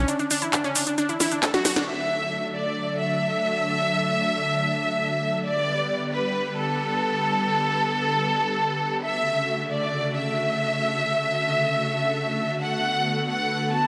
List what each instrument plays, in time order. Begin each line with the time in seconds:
0.08 synth pluck D4, closed hi-hat, shaker
0.19 synth pluck D4, closed hi-hat, shaker
0.31 synth pluck D4, open hi-hat, shaker
0.42 synth pluck E4, closed hi-hat, shaker
0.53 synth pluck D4, clap, closed hi-hat, shaker
0.64 synth pluck C#4, closed hi-hat, shaker
0.75 synth pluck D4, open hi-hat, shaker
0.87 synth pluck D4, closed hi-hat, shaker
0.98 synth pluck D4, closed hi-hat, shaker
1.09 synth pluck E4, closed hi-hat, shaker
1.20 synth pluck E4, snare, open hi-hat, shaker
1.31 synth pluck D4, closed hi-hat, shaker
1.43 synth pluck A4, snare, clap, closed hi-hat, shaker
1.54 synth pluck F#4, snare, closed hi-hat, shaker
1.65 synth pluck F#4, snare, open hi-hat, shaker
1.76 synth pluck D4, snare, closed hi-hat, shaker
1.87 supersaw synth D3 F#3 A3 D4 A4, violin section E5
2.55 violin section D5
3.00 violin section E5
5.46 supersaw synth D3 G3 B3 G4 B4, violin section D5
6.13 violin section B4
6.58 violin section A4
9.04 supersaw synth C#3 D3 A3 F#4 A4, violin section E5
9.71 violin section D5
10.16 violin section E5
12.62 supersaw synth B3, violin section F#5
13.29 violin section F#5
13.74 violin section A5